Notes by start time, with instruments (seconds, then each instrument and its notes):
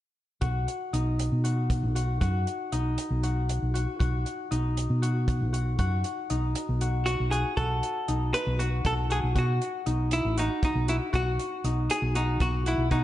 0.41 fingered electric bass B1, harp F#4, kick, closed hi-hat
0.68 closed hi-hat
0.93 fingered electric bass B1, harp D#4, closed hi-hat
1.19 closed hi-hat
1.32 fingered electric bass B2
1.44 harp F#4, closed hi-hat
1.70 kick, closed hi-hat
1.83 fingered electric bass B1
1.95 harp F#4, closed hi-hat
2.21 fingered electric bass F#2, harp F#4, kick, closed hi-hat
2.47 closed hi-hat
2.72 fingered electric bass B1, harp D#4, closed hi-hat
2.98 closed hi-hat
3.10 fingered electric bass B1
3.23 harp F#4, closed hi-hat
3.49 closed hi-hat
3.62 fingered electric bass B1
3.74 harp F#4, closed hi-hat
3.99 fingered electric bass B1, harp F#4, kick, closed hi-hat
4.26 closed hi-hat
4.51 fingered electric bass B1, harp D#4, closed hi-hat
4.77 closed hi-hat
4.90 fingered electric bass B2
5.02 harp F#4, closed hi-hat
5.28 kick, closed hi-hat
5.41 fingered electric bass B1
5.53 harp F#4, closed hi-hat
5.79 fingered electric bass F#2, harp F#4, kick, closed hi-hat
6.04 closed hi-hat
6.30 fingered electric bass B1, harp D#4, closed hi-hat
6.55 closed hi-hat
6.69 fingered electric bass B1
6.81 harp F#4, closed hi-hat
7.06 hollow-body jazz guitar F#4, closed hi-hat
7.20 fingered electric bass B1
7.31 harp F#4, hollow-body jazz guitar G#4, closed hi-hat
7.57 fingered electric bass B1, harp F#4, hollow-body jazz guitar A4, kick, closed hi-hat
7.83 closed hi-hat
8.08 fingered electric bass B1, harp D#4, closed hi-hat
8.34 hollow-body jazz guitar B4, closed hi-hat
8.47 fingered electric bass B1
8.59 harp F#4, hollow-body jazz guitar F#4, closed hi-hat
8.85 fingered electric bass B1, hollow-body jazz guitar A4, kick, closed hi-hat
9.10 harp F#4, hollow-body jazz guitar G#4, closed hi-hat
9.23 fingered electric bass B1
9.35 fingered electric bass B2, harp F#4, hollow-body jazz guitar F#4, kick, closed hi-hat
9.61 closed hi-hat
9.86 fingered electric bass B1, harp D#4, closed hi-hat
10.11 hollow-body jazz guitar E4, closed hi-hat
10.25 fingered electric bass A1
10.37 hollow-body jazz guitar D#4, harp F#4, closed hi-hat
10.63 hollow-body jazz guitar D#4, kick, closed hi-hat
10.75 fingered electric bass B1
10.88 hollow-body jazz guitar E4, harp F#4, closed hi-hat
11.13 fingered electric bass B1, harp F#4, hollow-body jazz guitar F#4, kick, closed hi-hat
11.39 closed hi-hat
11.64 fingered electric bass B1, harp D#4, closed hi-hat
11.90 hollow-body jazz guitar G#4, closed hi-hat
12.02 fingered electric bass B1
12.15 hollow-body jazz guitar D#4, harp F#4, closed hi-hat
12.40 fingered electric bass B1, hollow-body jazz guitar F#4, kick, closed hi-hat
12.66 hollow-body jazz guitar E4, harp F#4, closed hi-hat
12.78 fingered electric bass B1
12.91 fingered electric bass B2, hollow-body jazz guitar D#4, harp F#4, kick, closed hi-hat